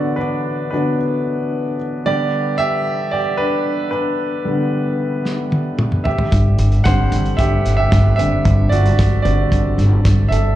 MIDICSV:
0, 0, Header, 1, 5, 480
1, 0, Start_track
1, 0, Key_signature, 1, "major"
1, 0, Tempo, 532387
1, 1860, Time_signature, 4, 2, 24, 8
1, 9516, End_track
2, 0, Start_track
2, 0, Title_t, "Grand piano"
2, 0, Program_c, 0, 0
2, 0, Control_c, 0, 64, 127
2, 0, Note_on_c, 0, 50, 46
2, 0, Note_on_c, 0, 54, 43
2, 0, Note_on_c, 0, 59, 50
2, 0, Note_on_c, 0, 66, 59
2, 0, Note_on_c, 0, 71, 66
2, 0, Note_on_c, 0, 74, 64
2, 0, Note_on_c, 0, 76, 88
2, 147, Note_off_c, 0, 71, 0
2, 147, Note_on_c, 0, 71, 68
2, 148, Note_off_c, 0, 66, 0
2, 180, Note_off_c, 0, 74, 0
2, 181, Note_on_c, 0, 62, 61
2, 623, Note_off_c, 0, 71, 0
2, 627, Note_off_c, 0, 62, 0
2, 636, Note_on_c, 0, 71, 62
2, 641, Note_off_c, 0, 50, 0
2, 645, Note_off_c, 0, 54, 0
2, 648, Note_off_c, 0, 59, 0
2, 655, Note_on_c, 0, 50, 38
2, 659, Note_on_c, 0, 54, 37
2, 662, Note_on_c, 0, 59, 49
2, 665, Note_on_c, 0, 62, 56
2, 873, Note_off_c, 0, 50, 0
2, 875, Note_off_c, 0, 54, 0
2, 877, Note_off_c, 0, 59, 0
2, 1572, Note_off_c, 0, 71, 0
2, 1587, Note_off_c, 0, 62, 0
2, 1853, Note_on_c, 0, 50, 54
2, 1856, Note_on_c, 0, 74, 97
2, 1861, Note_on_c, 0, 55, 46
2, 1867, Note_on_c, 0, 59, 53
2, 1867, Note_on_c, 0, 67, 72
2, 1871, Control_c, 0, 64, 0
2, 1874, Note_off_c, 0, 76, 0
2, 2042, Control_c, 0, 64, 127
2, 2310, Note_off_c, 0, 67, 0
2, 2324, Note_on_c, 0, 76, 106
2, 2340, Note_on_c, 0, 67, 75
2, 2353, Note_off_c, 0, 74, 0
2, 2540, Note_off_c, 0, 50, 0
2, 2545, Note_off_c, 0, 55, 0
2, 2548, Note_off_c, 0, 59, 0
2, 2787, Note_off_c, 0, 67, 0
2, 2806, Note_on_c, 0, 74, 85
2, 2822, Note_on_c, 0, 67, 73
2, 2827, Note_off_c, 0, 76, 0
2, 2862, Note_off_c, 0, 74, 0
2, 2876, Note_off_c, 0, 67, 0
2, 3043, Note_on_c, 0, 71, 92
2, 3061, Note_on_c, 0, 62, 67
2, 3507, Note_off_c, 0, 62, 0
2, 3511, Note_off_c, 0, 71, 0
2, 3524, Note_on_c, 0, 71, 79
2, 3542, Note_on_c, 0, 62, 49
2, 4010, Note_on_c, 0, 50, 45
2, 4016, Note_on_c, 0, 55, 41
2, 4019, Note_on_c, 0, 59, 49
2, 4937, Note_off_c, 0, 71, 0
2, 4946, Note_off_c, 0, 62, 0
2, 5420, Note_off_c, 0, 50, 0
2, 5422, Note_off_c, 0, 55, 0
2, 5424, Note_off_c, 0, 59, 0
2, 5445, Note_on_c, 0, 76, 68
2, 5465, Note_on_c, 0, 67, 57
2, 5474, Control_c, 0, 64, 0
2, 5607, Control_c, 0, 64, 127
2, 6147, Note_off_c, 0, 67, 0
2, 6166, Note_on_c, 0, 78, 91
2, 6176, Note_on_c, 0, 50, 53
2, 6182, Note_on_c, 0, 55, 50
2, 6187, Note_on_c, 0, 60, 62
2, 6187, Note_on_c, 0, 72, 76
2, 6195, Note_off_c, 0, 76, 0
2, 6631, Note_off_c, 0, 72, 0
2, 6643, Note_on_c, 0, 76, 82
2, 6667, Note_on_c, 0, 67, 66
2, 6668, Note_off_c, 0, 78, 0
2, 6989, Note_off_c, 0, 76, 0
2, 6999, Note_off_c, 0, 67, 0
2, 7002, Note_on_c, 0, 76, 88
2, 7029, Note_on_c, 0, 67, 67
2, 7343, Note_off_c, 0, 76, 0
2, 7356, Note_off_c, 0, 50, 0
2, 7356, Note_on_c, 0, 76, 85
2, 7360, Note_off_c, 0, 67, 0
2, 7365, Note_off_c, 0, 55, 0
2, 7367, Note_off_c, 0, 60, 0
2, 7370, Note_on_c, 0, 50, 43
2, 7379, Note_on_c, 0, 55, 41
2, 7381, Note_on_c, 0, 60, 49
2, 7384, Note_on_c, 0, 67, 60
2, 7829, Note_off_c, 0, 67, 0
2, 7838, Note_on_c, 0, 74, 82
2, 7863, Note_off_c, 0, 76, 0
2, 7867, Note_on_c, 0, 66, 67
2, 8059, Note_off_c, 0, 50, 0
2, 8064, Note_off_c, 0, 55, 0
2, 8065, Note_off_c, 0, 60, 0
2, 8302, Note_off_c, 0, 74, 0
2, 8311, Note_off_c, 0, 66, 0
2, 8316, Note_on_c, 0, 74, 81
2, 8336, Note_on_c, 0, 50, 46
2, 8338, Note_on_c, 0, 55, 37
2, 8342, Note_on_c, 0, 60, 47
2, 8346, Note_on_c, 0, 66, 61
2, 8554, Note_off_c, 0, 50, 0
2, 8555, Note_off_c, 0, 55, 0
2, 8557, Note_off_c, 0, 60, 0
2, 9267, Note_off_c, 0, 66, 0
2, 9273, Note_on_c, 0, 76, 80
2, 9303, Note_on_c, 0, 69, 63
2, 9317, Note_off_c, 0, 74, 0
2, 9516, Note_off_c, 0, 69, 0
2, 9516, Note_off_c, 0, 76, 0
2, 9516, End_track
3, 0, Start_track
3, 0, Title_t, "Brass ensemble"
3, 0, Program_c, 1, 61
3, 0, Note_on_c, 1, 50, 59
3, 0, Note_on_c, 1, 52, 49
3, 0, Note_on_c, 1, 59, 64
3, 1825, Note_off_c, 1, 50, 0
3, 1839, Note_off_c, 1, 52, 0
3, 1859, Note_on_c, 1, 50, 59
3, 1861, Note_on_c, 1, 55, 59
3, 5426, Note_off_c, 1, 59, 0
3, 5465, Note_on_c, 1, 60, 62
3, 7364, Note_off_c, 1, 60, 0
3, 7388, Note_on_c, 1, 62, 72
3, 9504, Note_off_c, 1, 50, 0
3, 9505, Note_off_c, 1, 55, 0
3, 9516, Note_off_c, 1, 62, 0
3, 9516, End_track
4, 0, Start_track
4, 0, Title_t, "Upright bass"
4, 0, Program_c, 2, 32
4, 5699, Note_on_c, 2, 31, 96
4, 5897, Note_off_c, 2, 31, 0
4, 5939, Note_on_c, 2, 31, 87
4, 6137, Note_off_c, 2, 31, 0
4, 6180, Note_on_c, 2, 31, 74
4, 6377, Note_off_c, 2, 31, 0
4, 6420, Note_on_c, 2, 31, 70
4, 6617, Note_off_c, 2, 31, 0
4, 6658, Note_on_c, 2, 31, 78
4, 6856, Note_off_c, 2, 31, 0
4, 6906, Note_on_c, 2, 31, 78
4, 7101, Note_off_c, 2, 31, 0
4, 7142, Note_on_c, 2, 31, 85
4, 7338, Note_off_c, 2, 31, 0
4, 7386, Note_on_c, 2, 30, 70
4, 7581, Note_off_c, 2, 30, 0
4, 7622, Note_on_c, 2, 31, 82
4, 7818, Note_off_c, 2, 31, 0
4, 7860, Note_on_c, 2, 31, 94
4, 8057, Note_off_c, 2, 31, 0
4, 8103, Note_on_c, 2, 31, 81
4, 8299, Note_off_c, 2, 31, 0
4, 8340, Note_on_c, 2, 31, 73
4, 8537, Note_off_c, 2, 31, 0
4, 8581, Note_on_c, 2, 31, 81
4, 8778, Note_off_c, 2, 31, 0
4, 8817, Note_on_c, 2, 31, 88
4, 9015, Note_off_c, 2, 31, 0
4, 9061, Note_on_c, 2, 31, 88
4, 9257, Note_off_c, 2, 31, 0
4, 9292, Note_on_c, 2, 31, 82
4, 9492, Note_off_c, 2, 31, 0
4, 9516, End_track
5, 0, Start_track
5, 0, Title_t, "Drums"
5, 4737, Note_on_c, 9, 38, 53
5, 4827, Note_off_c, 9, 38, 0
5, 4978, Note_on_c, 9, 48, 58
5, 5068, Note_off_c, 9, 48, 0
5, 5217, Note_on_c, 9, 47, 81
5, 5307, Note_off_c, 9, 47, 0
5, 5337, Note_on_c, 9, 45, 70
5, 5427, Note_off_c, 9, 45, 0
5, 5457, Note_on_c, 9, 43, 83
5, 5547, Note_off_c, 9, 43, 0
5, 5576, Note_on_c, 9, 43, 75
5, 5666, Note_off_c, 9, 43, 0
5, 5700, Note_on_c, 9, 36, 94
5, 5701, Note_on_c, 9, 42, 77
5, 5790, Note_off_c, 9, 36, 0
5, 5792, Note_off_c, 9, 42, 0
5, 5937, Note_on_c, 9, 42, 62
5, 6028, Note_off_c, 9, 42, 0
5, 6057, Note_on_c, 9, 42, 42
5, 6147, Note_off_c, 9, 42, 0
5, 6178, Note_on_c, 9, 42, 75
5, 6179, Note_on_c, 9, 38, 105
5, 6181, Note_on_c, 9, 36, 91
5, 6269, Note_off_c, 9, 38, 0
5, 6269, Note_off_c, 9, 42, 0
5, 6271, Note_off_c, 9, 36, 0
5, 6419, Note_on_c, 9, 43, 61
5, 6420, Note_on_c, 9, 42, 79
5, 6509, Note_off_c, 9, 43, 0
5, 6510, Note_off_c, 9, 42, 0
5, 6540, Note_on_c, 9, 42, 38
5, 6630, Note_off_c, 9, 42, 0
5, 6659, Note_on_c, 9, 36, 82
5, 6660, Note_on_c, 9, 42, 75
5, 6749, Note_off_c, 9, 36, 0
5, 6750, Note_off_c, 9, 42, 0
5, 6902, Note_on_c, 9, 42, 62
5, 6904, Note_on_c, 9, 38, 29
5, 6992, Note_off_c, 9, 42, 0
5, 6994, Note_off_c, 9, 38, 0
5, 7141, Note_on_c, 9, 38, 89
5, 7142, Note_on_c, 9, 36, 94
5, 7145, Note_on_c, 9, 42, 86
5, 7231, Note_off_c, 9, 38, 0
5, 7232, Note_off_c, 9, 36, 0
5, 7235, Note_off_c, 9, 42, 0
5, 7386, Note_on_c, 9, 42, 82
5, 7476, Note_off_c, 9, 42, 0
5, 7622, Note_on_c, 9, 36, 97
5, 7622, Note_on_c, 9, 42, 71
5, 7712, Note_off_c, 9, 36, 0
5, 7712, Note_off_c, 9, 42, 0
5, 7863, Note_on_c, 9, 42, 63
5, 7953, Note_off_c, 9, 42, 0
5, 7984, Note_on_c, 9, 42, 46
5, 8074, Note_off_c, 9, 42, 0
5, 8104, Note_on_c, 9, 36, 101
5, 8105, Note_on_c, 9, 38, 112
5, 8105, Note_on_c, 9, 42, 76
5, 8194, Note_off_c, 9, 36, 0
5, 8195, Note_off_c, 9, 42, 0
5, 8196, Note_off_c, 9, 38, 0
5, 8342, Note_on_c, 9, 42, 78
5, 8342, Note_on_c, 9, 43, 55
5, 8432, Note_off_c, 9, 42, 0
5, 8432, Note_off_c, 9, 43, 0
5, 8582, Note_on_c, 9, 36, 84
5, 8585, Note_on_c, 9, 42, 75
5, 8672, Note_off_c, 9, 36, 0
5, 8675, Note_off_c, 9, 42, 0
5, 8824, Note_on_c, 9, 42, 61
5, 8827, Note_on_c, 9, 38, 26
5, 8915, Note_off_c, 9, 42, 0
5, 8917, Note_off_c, 9, 38, 0
5, 9062, Note_on_c, 9, 36, 111
5, 9063, Note_on_c, 9, 38, 96
5, 9068, Note_on_c, 9, 42, 98
5, 9152, Note_off_c, 9, 36, 0
5, 9153, Note_off_c, 9, 38, 0
5, 9158, Note_off_c, 9, 42, 0
5, 9307, Note_on_c, 9, 42, 76
5, 9398, Note_off_c, 9, 42, 0
5, 9516, End_track
0, 0, End_of_file